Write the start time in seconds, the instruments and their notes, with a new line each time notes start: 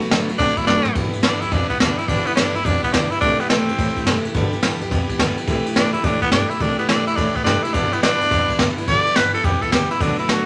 0.00 steel-string acoustic guitar A3 B3 F#4, ride
0.10 upright bass A2, steel-string acoustic guitar D3 F#3 A3 B3 F#4, snare, ride
0.29 upright bass A2, steel-string acoustic guitar A3 B3 F#4, ride
0.38 upright bass C3, steel-string acoustic guitar F#3 A3 B3, tenor saxophone D4, kick, ride
0.42 steel-string acoustic guitar F#4
0.57 steel-string acoustic guitar A3 B3 F#4, tenor saxophone E4, kick, ride
0.66 upright bass F#1, steel-string acoustic guitar D3 F#3 A3 B3 F#4, tenor saxophone D4, snare
0.85 steel-string acoustic guitar A3 B3, muted upright bass stroke, floor tom
0.95 upright bass G1, steel-string acoustic guitar G2 D3 E3 G3 B3 E4, kick, ride
1.13 steel-string acoustic guitar E3 G3 B3 E4, ride
1.23 upright bass D2, steel-string acoustic guitar G2 D3 E3 G3 B3 E4, tenor saxophone D4, snare, ride
1.41 upright bass D2, steel-string acoustic guitar E3 G3 B3 E4, tenor saxophone E4, ride
1.51 upright bass F2, steel-string acoustic guitar E3 G3 B3 E4, tenor saxophone D4, kick, ride
1.69 steel-string acoustic guitar E3 G3 B3 E4, tenor saxophone B3, kick, ride
1.80 upright bass D2, steel-string acoustic guitar G2 D3 E3 G3 B3 E4, tenor saxophone D4, snare, ride
1.98 steel-string acoustic guitar E3 G3 B3 E4, tenor saxophone E4, muted upright bass stroke, ride
2.08 upright bass G1, steel-string acoustic guitar G2 D3 E3 G3 B3 E4, tenor saxophone D4, kick, ride
2.26 steel-string acoustic guitar E3 G3 B3 E4, tenor saxophone B3, muted upright bass stroke, ride
2.35 upright bass D2, steel-string acoustic guitar G2 D3 E3 G3 B3 E4, tenor saxophone D4, snare, ride
2.54 upright bass D2, steel-string acoustic guitar E3 G3 B3 E4, tenor saxophone E4, ride
2.65 upright bass F2, steel-string acoustic guitar E3 G3 B3 E4, tenor saxophone D4, kick, ride
2.83 steel-string acoustic guitar E3 G3 B3 E4, tenor saxophone B3, kick, ride
2.92 upright bass D2, steel-string acoustic guitar G2 D3 E3 G3 B3 E4, tenor saxophone D4, snare, ride
3.11 steel-string acoustic guitar E3 G3 B3 E4, tenor saxophone E4, ride
3.21 upright bass C2, steel-string acoustic guitar C3 E3 A3 E4 G4, tenor saxophone D4, kick, ride
3.40 steel-string acoustic guitar A3 E4 G4, tenor saxophone B3, ride
3.49 upright bass G2, steel-string acoustic guitar C3 E3 A3 E4 G4, tenor saxophone C4, snare, ride
3.69 upright bass G2, steel-string acoustic guitar A3 E4 G4, ride
3.78 upright bass A2, steel-string acoustic guitar E3 A3 E4 G4, kick, ride
3.96 steel-string acoustic guitar A3 E4 G4, muted upright bass stroke, kick, ride
4.06 upright bass G2, steel-string acoustic guitar C3 E3 A3 E4 G4, snare, ride
4.24 steel-string acoustic guitar A3 E4 G4, muted upright bass stroke, ride
4.34 upright bass G1, steel-string acoustic guitar G2 D3 E3 G3 B3 G4, kick, ride
4.52 steel-string acoustic guitar E3 G3 B3 G4, ride
4.63 upright bass D2, steel-string acoustic guitar G2 D3 E3 G3 B3 G4, snare, ride
4.81 upright bass D2, steel-string acoustic guitar E3 G3 B3 G4, ride
4.89 upright bass F2, steel-string acoustic guitar E3 G3 B3 G4, kick, ride
5.08 steel-string acoustic guitar E3 G3 B3 G4, kick, ride
5.19 upright bass D2, steel-string acoustic guitar G2 D3 E3 G3 B3 G4, snare, ride
5.37 steel-string acoustic guitar E3 G3 B3 G4, ride
5.47 upright bass C2, steel-string acoustic guitar C3 E3 A3 E4 G4, kick, ride
5.66 steel-string acoustic guitar A3 E4 G4, ride
5.74 upright bass G2, steel-string acoustic guitar C3 E3 A3 E4 G4, tenor saxophone D4, snare, ride
5.93 upright bass G2, steel-string acoustic guitar A3 E4 G4, tenor saxophone E4, ride
6.03 upright bass A2, steel-string acoustic guitar E3 A3 E4 G4, tenor saxophone D4, kick, ride
6.22 steel-string acoustic guitar A3 E4 G4, tenor saxophone B3, kick, ride
6.31 upright bass G2, steel-string acoustic guitar C3 E3 A3 E4 G4, tenor saxophone D4, snare, ride
6.49 steel-string acoustic guitar A3 E4 G4, tenor saxophone E4, ride
6.60 upright bass C2, steel-string acoustic guitar C3 E3 A3 E4 G4, tenor saxophone D4, kick, ride
6.78 steel-string acoustic guitar A3 E4 G4, tenor saxophone B3, ride
6.88 upright bass G2, steel-string acoustic guitar C3 E3 A3 E4 G4, tenor saxophone D4, snare, ride
7.06 upright bass G2, steel-string acoustic guitar A3 E4 G4, tenor saxophone E4, ride
7.16 upright bass A2, steel-string acoustic guitar E3 A3 E4 G4, tenor saxophone D4, kick, ride
7.35 steel-string acoustic guitar A3 E4 G4, tenor saxophone B3, muted upright bass stroke, kick, ride
7.44 upright bass G2, steel-string acoustic guitar C3 E3 A3 E4 G4, tenor saxophone D4, snare, ride
7.63 steel-string acoustic guitar A3 E4 G4, tenor saxophone E4, ride
7.73 upright bass G1, steel-string acoustic guitar G2 D3 E3 G3 B3 E4, tenor saxophone D4, kick, ride
7.92 steel-string acoustic guitar E3 G3 B3 E4, tenor saxophone B3, muted upright bass stroke, ride
8.01 upright bass D2, steel-string acoustic guitar G2 D3 E3 G3 B3 E4, tenor saxophone D4, snare, ride
8.21 upright bass D2, steel-string acoustic guitar E3 G3 B3 E4, ride
8.31 upright bass F2, steel-string acoustic guitar E3 G3 B3 E4, kick, ride
8.49 steel-string acoustic guitar E3 G3 B3 E4, kick, ride
8.58 upright bass D2, steel-string acoustic guitar G2 D3 E3 G3 B3 E4, snare, ride
8.76 steel-string acoustic guitar E3 G3 B3 E4, muted upright bass stroke, ride
8.88 upright bass G1, steel-string acoustic guitar G2 D3 E3 G3 B3 E4, tenor saxophone D5, kick, ride
9.06 steel-string acoustic guitar E3 G3 B3 E4, ride
9.15 upright bass D2, steel-string acoustic guitar G2 D3 E3 G3 B3 E4, tenor saxophone B4, snare, ride
9.33 upright bass D2, steel-string acoustic guitar E3 G3 B3 E4, tenor saxophone A4, ride
9.42 upright bass F2, steel-string acoustic guitar E3 G3 B3 E4, tenor saxophone G4, kick, ride
9.61 steel-string acoustic guitar E3 G3 B3 E4, tenor saxophone A4, kick, ride
9.71 upright bass D2, steel-string acoustic guitar G2 D3 E3 G3 B3 E4, tenor saxophone G4, snare, ride
9.89 steel-string acoustic guitar E3 G3 B3 E4, tenor saxophone E4, ride
10.00 upright bass D2, steel-string acoustic guitar D3 F#3 A3 B3 F#4, tenor saxophone D4, kick, ride
10.18 steel-string acoustic guitar A3 B3 F#4, tenor saxophone E4, muted upright bass stroke, ride
10.28 upright bass A2, steel-string acoustic guitar D3 F#3 A3 B3 F#4, tenor saxophone F#4, snare, ride